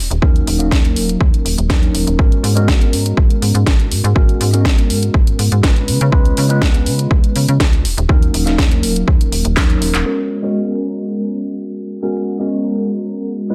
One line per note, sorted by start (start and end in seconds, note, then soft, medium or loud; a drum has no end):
0.10 0.20 D#1 loud
0.10 closed hi-hat medium
0.22 0.43 D#2 loud
0.22 0.56 F#3 medium
0.22 0.56 A#3 medium
0.22 0.57 C#4 medium
0.22 0.57 D#4 medium
0.22 0.57 A#4 medium
0.22 kick loud
0.36 closed hi-hat soft
0.47 0.73 D#1 loud
0.47 open hi-hat loud
0.59 1.67 F#3 medium
0.59 1.67 A#3 medium
0.59 1.67 C#4 medium
0.59 1.67 D#4 medium
0.59 1.67 A#4 medium
0.59 closed hi-hat medium
0.71 0.98 D#2 medium
0.71 kick loud
0.71 snare loud
0.85 closed hi-hat medium
0.96 1.17 D#1 loud
0.96 open hi-hat loud
1.09 closed hi-hat medium
1.21 1.31 D#2 medium
1.21 kick loud
1.33 1.43 D#1 soft
1.33 closed hi-hat soft
1.45 1.56 D#1 medium
1.45 open hi-hat loud
1.58 1.71 D#1 medium
1.58 closed hi-hat medium
1.69 1.90 D#2 loud
1.69 2.16 F#3 medium
1.69 2.16 A#3 medium
1.69 2.16 C#4 medium
1.69 2.16 D#4 medium
1.69 2.16 A#4 medium
1.69 kick loud
1.69 snare loud
1.83 closed hi-hat soft
1.94 2.05 D#1 medium
1.94 open hi-hat loud
2.07 2.17 D#1 medium
2.07 closed hi-hat medium
2.19 2.39 G#1 loud
2.19 2.53 G#3 medium
2.19 2.53 B3 medium
2.19 2.53 C#4 medium
2.19 2.54 F#4 medium
2.19 2.54 A#4 medium
2.19 kick loud
2.32 closed hi-hat soft
2.43 2.69 G#2 loud
2.43 open hi-hat loud
2.55 4.12 G#3 medium
2.55 4.13 B3 medium
2.55 4.13 C#4 medium
2.55 4.13 F#4 medium
2.55 4.13 A#4 medium
2.55 closed hi-hat medium
2.68 2.94 G#1 medium
2.68 kick loud
2.68 snare loud
2.81 closed hi-hat medium
2.92 3.13 G#2 loud
2.92 open hi-hat loud
3.06 closed hi-hat medium
3.17 3.28 G#1 medium
3.17 kick loud
3.30 closed hi-hat soft
3.42 3.53 G#2 medium
3.42 open hi-hat loud
3.54 3.64 G#2 medium
3.54 closed hi-hat medium
3.66 3.93 G#1 medium
3.66 kick loud
3.66 snare loud
3.80 closed hi-hat soft
3.91 4.02 G#2 medium
3.91 open hi-hat loud
4.04 4.14 G#2 loud
4.04 closed hi-hat medium
4.15 4.36 G#1 loud
4.15 4.50 G#3 medium
4.15 4.50 B3 medium
4.15 4.50 C#4 medium
4.15 4.50 F#4 medium
4.15 4.50 A#4 medium
4.15 kick loud
4.29 closed hi-hat soft
4.40 4.67 G#2 loud
4.40 open hi-hat loud
4.53 5.60 G#3 medium
4.53 5.61 B3 medium
4.53 5.61 C#4 medium
4.53 5.61 F#4 medium
4.53 5.61 A#4 medium
4.53 closed hi-hat medium
4.65 4.91 G#1 medium
4.65 kick loud
4.65 snare loud
4.78 closed hi-hat medium
4.90 5.10 G#2 loud
4.90 open hi-hat loud
5.03 closed hi-hat medium
5.14 5.25 G#1 medium
5.14 kick loud
5.27 5.37 G#2 soft
5.27 closed hi-hat medium
5.39 5.49 G#2 medium
5.39 open hi-hat loud
5.52 5.61 G#2 medium
5.52 closed hi-hat medium
5.63 5.90 G#1 medium
5.63 6.09 G#3 medium
5.63 6.10 B3 medium
5.63 6.10 C#4 medium
5.63 6.10 F4 medium
5.63 6.10 B4 medium
5.63 kick loud
5.63 snare loud
5.76 closed hi-hat soft
5.88 5.99 C#3 medium
5.88 open hi-hat loud
6.01 6.11 C#3 loud
6.01 closed hi-hat medium
6.12 6.33 C#2 loud
6.12 6.46 G#3 medium
6.12 6.47 B3 medium
6.12 6.47 C#4 medium
6.12 6.47 F4 medium
6.12 6.47 B4 loud
6.12 kick loud
6.25 closed hi-hat soft
6.37 6.63 C#3 loud
6.37 open hi-hat loud
6.49 7.83 G#3 medium
6.49 7.83 B3 medium
6.49 7.83 C#4 medium
6.49 7.83 F4 medium
6.49 7.84 B4 medium
6.49 closed hi-hat medium
6.62 6.88 C#2 medium
6.62 kick loud
6.62 snare loud
6.74 closed hi-hat medium
6.86 7.07 C#3 loud
6.86 open hi-hat loud
6.99 closed hi-hat medium
7.11 7.21 C#2 medium
7.11 kick loud
7.24 closed hi-hat medium
7.36 7.46 C#3 medium
7.36 open hi-hat loud
7.49 7.58 C#3 medium
7.49 closed hi-hat medium
7.60 7.86 C#2 medium
7.60 kick loud
7.60 snare loud
7.73 closed hi-hat soft
7.85 7.95 D#1 medium
7.85 open hi-hat loud
7.98 8.07 D#1 loud
7.98 closed hi-hat medium
8.09 8.30 D#2 loud
8.09 8.43 F#3 medium
8.09 8.43 A#3 medium
8.09 8.43 C#4 medium
8.09 8.44 D#4 medium
8.09 8.44 A#4 medium
8.09 kick loud
8.23 closed hi-hat soft
8.34 8.60 D#1 loud
8.34 open hi-hat loud
8.45 9.53 F#3 medium
8.45 9.54 A#3 medium
8.45 9.54 C#4 medium
8.45 9.54 D#4 medium
8.45 9.54 A#4 medium
8.45 snare soft
8.45 closed hi-hat medium
8.58 8.85 D#2 medium
8.58 kick loud
8.58 snare loud
8.72 closed hi-hat medium
8.83 9.04 D#1 loud
8.83 open hi-hat loud
8.96 closed hi-hat medium
9.07 9.18 D#2 medium
9.07 kick loud
9.21 9.30 D#1 soft
9.21 closed hi-hat medium
9.32 9.43 D#1 medium
9.32 open hi-hat loud
9.45 9.58 D#1 medium
9.45 closed hi-hat medium
9.56 9.77 D#2 medium
9.56 10.03 F#3 medium
9.56 10.03 A#3 medium
9.56 10.03 C#4 medium
9.56 10.03 D#4 medium
9.56 10.03 A#4 medium
9.56 kick loud
9.56 snare loud
9.56 clap loud
9.70 closed hi-hat soft
9.81 9.92 D#1 medium
9.81 open hi-hat loud
9.94 10.04 D#1 medium
9.94 clap medium
9.94 closed hi-hat medium
10.05 10.40 G#3 medium
10.05 10.40 B3 medium
10.05 10.40 C#4 medium
10.05 10.40 F#4 medium
10.05 10.40 A#4 medium
10.42 11.99 G#3 medium
10.42 12.00 B3 medium
10.42 12.00 C#4 medium
10.42 12.00 F#4 medium
10.42 12.00 A#4 medium
12.02 12.37 G#3 medium
12.02 12.37 B3 medium
12.02 12.37 C#4 medium
12.02 12.37 F#4 medium
12.02 12.37 A#4 medium
12.39 13.47 G#3 medium
12.39 13.47 B3 medium
12.39 13.47 C#4 medium
12.39 13.48 F#4 medium
12.39 13.48 A#4 medium
13.50 13.55 G#3 medium
13.50 13.55 B3 medium
13.50 13.55 C#4 medium
13.50 13.55 F4 medium
13.50 13.55 B4 medium